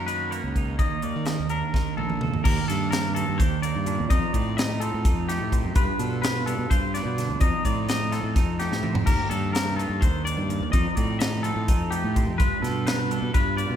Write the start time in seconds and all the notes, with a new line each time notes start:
Already playing: F#2 A#3 C#4 D#4
0.07 D#3 B4, closed hi-hat
0.31 A#3 C#5, closed hi-hat
0.44 C#2
0.56 D#4, kick, closed hi-hat
0.79 D#2 D#5, kick, closed hi-hat
1.02 D#2 D#3 D5, closed hi-hat
1.16 D#3
1.25 A#3 D#5, snare, closed hi-hat
1.39 D#2
1.50 D4 A#4, closed hi-hat
1.74 D#3, kick, snare
1.97 A#1 A#3 A4, high tom
2.10 mid tom
2.21 D#2 A4, mid tom
2.34 D#2, floor tom
2.44 D#2 G4 A#4, kick, crash
2.68 G2 D4 A4, snare, closed hi-hat
2.91 G4 A#4, snare, closed hi-hat
3.15 D#3 D4 A4, closed hi-hat
3.29 G2
3.38 D#2 G4 C5, kick, closed hi-hat
3.62 A#3 D5, closed hi-hat
3.76 G2
3.86 A#2 D4, closed hi-hat
4.00 D#2
4.10 F2 D#4 D#5, kick, closed hi-hat
4.33 A2 C4 D5, kick, closed hi-hat
4.57 D#4 D#5, snare, closed hi-hat
4.80 F3 C4 A4, closed hi-hat
4.94 A2
5.05 F2 D#4, kick, closed hi-hat
5.28 A3 G4, snare, closed hi-hat
5.40 A2
5.52 C3 C4, kick, closed hi-hat
5.65 F#2
5.75 G2 F4 B4, kick, closed hi-hat
5.99 B2 D4 A4, closed hi-hat
6.22 F4 B4, snare, closed hi-hat
6.46 G3 D4 A4, closed hi-hat
6.59 B2
6.70 G2 F4 C5, kick, closed hi-hat
6.94 B3 D5, snare, closed hi-hat
7.05 B2
7.18 D3 D4, snare, closed hi-hat
7.29 D2
7.40 F2 D#4 D#5, kick, closed hi-hat
7.65 A2 C4 D5, kick, closed hi-hat
7.89 D#4 D#5, snare, closed hi-hat
8.12 F3 C4 A4, snare, closed hi-hat
8.23 A2
8.36 F2 D#4, kick, snare, closed hi-hat
8.59 A3 G4, snare, closed hi-hat
8.71 A2, snare
8.83 C3 A#3, mid tom
8.94 F2 C4, floor tom
9.06 D#2 G4 A#4, kick, closed hi-hat, crash
9.30 G2 D4 A4, closed hi-hat
9.53 G4 A#4, snare, closed hi-hat
9.76 D#3 D4 A4, closed hi-hat
9.89 G2
10.01 D#2 C5, kick, closed hi-hat
10.25 D5, closed hi-hat
10.37 G2
10.49 D#2, closed hi-hat
10.61 D#2
10.72 F2 D#4 D#5, kick, closed hi-hat
10.96 A2 C4 D5, kick, closed hi-hat
11.19 D#4 D#5, snare, closed hi-hat
11.43 F3 C4 A4, closed hi-hat
11.56 A2
11.68 F2 D#4, kick, closed hi-hat
11.91 A3 G4, closed hi-hat
12.04 A2
12.16 C3 C4, kick, closed hi-hat
12.27 F2
12.38 G2 F4 B4, kick, closed hi-hat
12.62 B2 D4 A4, snare, closed hi-hat
12.87 D#4 B4, snare, closed hi-hat
12.99 F4
13.11 G3 D4 A4, closed hi-hat
13.22 B2
13.34 G2 F4 B4, kick, closed hi-hat
13.57 B3 D5, closed hi-hat
13.70 B2